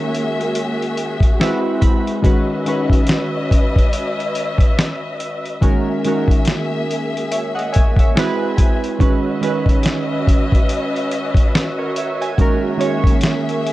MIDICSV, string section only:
0, 0, Header, 1, 2, 480
1, 0, Start_track
1, 0, Tempo, 845070
1, 1271, Time_signature, 4, 2, 24, 8
1, 7798, End_track
2, 0, Start_track
2, 0, Title_t, "String section"
2, 0, Program_c, 0, 48
2, 0, Note_on_c, 0, 58, 87
2, 0, Note_on_c, 0, 66, 83
2, 0, Note_on_c, 0, 68, 77
2, 0, Note_on_c, 0, 76, 91
2, 778, Note_off_c, 0, 58, 0
2, 794, Note_on_c, 0, 60, 78
2, 1252, Note_off_c, 0, 68, 0
2, 1253, Note_off_c, 0, 76, 0
2, 1268, Note_off_c, 0, 60, 0
2, 1273, Note_on_c, 0, 61, 85
2, 1273, Note_on_c, 0, 71, 79
2, 1274, Note_on_c, 0, 75, 96
2, 1274, Note_on_c, 0, 76, 78
2, 3173, Note_off_c, 0, 61, 0
2, 3173, Note_off_c, 0, 71, 0
2, 3173, Note_off_c, 0, 75, 0
2, 3173, Note_off_c, 0, 76, 0
2, 3190, Note_on_c, 0, 58, 86
2, 3191, Note_on_c, 0, 68, 80
2, 3191, Note_on_c, 0, 76, 90
2, 4609, Note_off_c, 0, 66, 0
2, 4616, Note_off_c, 0, 58, 0
2, 4617, Note_off_c, 0, 68, 0
2, 4617, Note_off_c, 0, 76, 0
2, 4631, Note_on_c, 0, 76, 84
2, 4632, Note_on_c, 0, 60, 82
2, 4632, Note_on_c, 0, 68, 69
2, 4633, Note_on_c, 0, 66, 81
2, 5105, Note_off_c, 0, 76, 0
2, 5107, Note_off_c, 0, 60, 0
2, 5107, Note_off_c, 0, 68, 0
2, 5110, Note_on_c, 0, 71, 76
2, 5110, Note_on_c, 0, 75, 97
2, 5111, Note_on_c, 0, 61, 85
2, 5112, Note_on_c, 0, 76, 77
2, 7012, Note_off_c, 0, 61, 0
2, 7012, Note_off_c, 0, 71, 0
2, 7012, Note_off_c, 0, 75, 0
2, 7012, Note_off_c, 0, 76, 0
2, 7032, Note_on_c, 0, 58, 87
2, 7033, Note_on_c, 0, 68, 80
2, 7034, Note_on_c, 0, 76, 93
2, 7798, Note_off_c, 0, 58, 0
2, 7798, Note_off_c, 0, 66, 0
2, 7798, Note_off_c, 0, 68, 0
2, 7798, Note_off_c, 0, 76, 0
2, 7798, End_track
0, 0, End_of_file